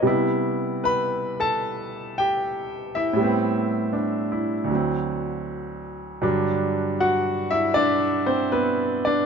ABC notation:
X:1
M:4/4
L:1/16
Q:"Swing" 1/4=78
K:G
V:1 name="Grand piano"
^d2 z2 [Bb]2 [Aa]4 [Gg]4 [Ee]2- | [Ee]4 D2 E3 z6 z | z4 [Ff]2 [Ee]2 [Dd]2 [Cc]2 [B,B]2 [Dd]2 |]
V:2 name="Grand piano" clef=bass
[C,G,B,E]16 | [A,,G,B,C]8 [D,,D,F,C]8 | [G,,D,F,D]16 |]